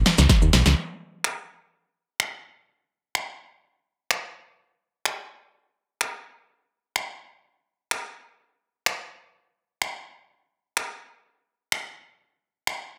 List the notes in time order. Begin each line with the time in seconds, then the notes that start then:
0.06 snare, open hi-hat, shaker
0.18 C#2, snare, shaker
0.29 kick, snare, closed hi-hat, shaker
0.42 D#2, shaker
0.53 B1, snare, open hi-hat, shaker
0.66 C#2, snare, shaker
1.24 finger snap
2.20 finger snap
3.15 finger snap
4.11 finger snap
5.05 finger snap
6.01 finger snap
6.96 finger snap
7.91 finger snap
8.86 finger snap
9.82 finger snap
10.77 finger snap
11.72 finger snap
12.67 finger snap